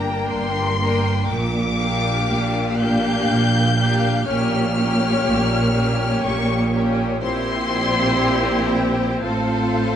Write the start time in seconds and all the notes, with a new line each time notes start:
Already playing: G1 G2 A#3 D4 A#4 G5 A#5
0.31 G1 G2 C6
0.79 A#3 D4 A#4 G5
1.26 A#1 A#2 D6
1.76 A#3 D4 G4 F5
2.28 A#1 A#2
2.79 A#3 D4 G4 F5 G6
3.30 A#1 A#2
3.77 A#3 D4 G4 F5
4.26 A#1 A#2 A#3 C#4 G4 C#5 F6
4.75 A#3 C#4 G4 C#5
5.26 A#1 A#2
5.75 A#3 C#4 G4 C#5
6.23 A#1 A#2 C#6
6.72 A#3 C#4 G4 C#5
7.22 A#1 A#2 C4 E4 G4 C5 C6
8.72 G5
9.23 A1 A2 C4 F4 A4 C5 F5